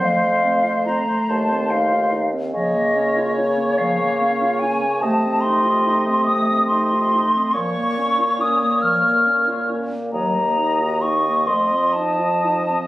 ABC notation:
X:1
M:6/8
L:1/16
Q:3/8=47
K:Bbm
V:1 name="Flute"
f4 b2 =a2 f2 z2 | e4 d2 f4 a2 | =a2 c'4 e'2 c'4 | d'4 e'2 f'4 z2 |
b4 d'2 c'2 =a4 |]
V:2 name="Oboe"
c8- c2 z2 | d12 | e12 | d8- d2 z2 |
e12 |]
V:3 name="Clarinet"
F, =A, C F C A, A, C E F E C | F, B, D F D B, F, B, D F D B, | =A, C E F E C A, C E F E C | F, B, D F D B, F, B, D F D B, |
G, B, E G E B, =A, C E F E C |]
V:4 name="French horn"
=A,8- A,2 z2 | B,12 | =A,12 | B,12- |
B,4 z2 F,6 |]
V:5 name="Bassoon" clef=bass
F,,4 z2 E,,6 | D,12 | C,8- C,2 z2 | B,,12 |
E,,6 F,,6 |]